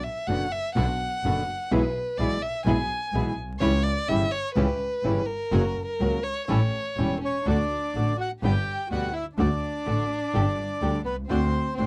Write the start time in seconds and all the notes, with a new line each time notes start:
0.04 E5
0.27 F#1 B2 D3 B3 D4 F#4 F#5
0.52 E5
0.75 B1 B2 D3 B3 D4 F#4 F#5
1.24 F#1 B2 D3 B3 D4 F#4
1.71 B1 B2 E3 G#3 B3 E4 G#4 B4
2.19 B1 B2 E3 G#3 B3 E4 G#4 D5
2.43 E5
2.66 B1 B2 E3 G#3 B3 E4 G#4 G#5
3.13 B1 B2 E3 G#3 B3 E4 G#4
3.37 B1
3.60 C#2 C#3 E3 G3 C#4 E4 G4 C#5
3.83 D5
4.08 G1 C#3 E3 G3 C#4 E4 G4 E5
4.32 C#5
4.55 C#2 C#3 E3 G3 C#4 E4 G4 B4
5.04 G1 C#3 E3 G3 C#4 E4 G4
5.26 A#4
5.52 F#1 C#3 F#3 A#3 C#4 F#4 A#4
5.86 A#4
6.00 C#2 C#3 F#3 A#3 C#4 F#4 A#4
6.23 C#5
6.48 A1 E3 G3 C#4 E4 G4 A4 C#5
6.97 E1 E3 G3 C#4 E4 G4 A4
7.21 C#4 C#5
7.45 D2 D3 A3 D4 F#4 A4 D5
7.94 A1 D3 A3 D4 F#4 A4
8.17 F#4 F#5
8.41 G1 B2 D3 G3 B3 D4 G4 B4 G5
8.90 D2 B2 D3 G3 B3 D4 F#4 G4 B4 F#5
9.13 E4 E5
9.38 D2 D3 A3 D4 F#4 A4 D5
9.86 A1 D3 A3 D4 F#4 A4
10.34 G1 D3 G3 D4 G4 A4
10.81 D2 D3 G3 D4 G4 A4
11.04 C2 B3 B4
11.27 D2 D3 A3 C4 D4 F#4 C5
11.74 A1 D3 C4 D4 F#4 C5
11.78 A3 C4 F#4